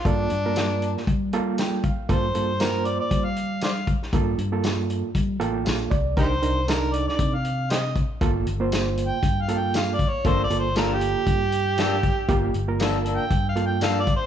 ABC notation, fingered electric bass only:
X:1
M:4/4
L:1/8
Q:"Swing 16ths" 1/4=118
K:Gm
V:1 name="Fingered electric bass" clef=bass
G,, G,,3 G,4 | G,, G,,3 G,4 | G,, G,,3 G, A,,, B,,, C,, | C,, C,,3 C,4 |
G,,, G,,,3 G,,4 | G,,, G,,,3 G,,4 | G,,, G,,,3 G,,4 |]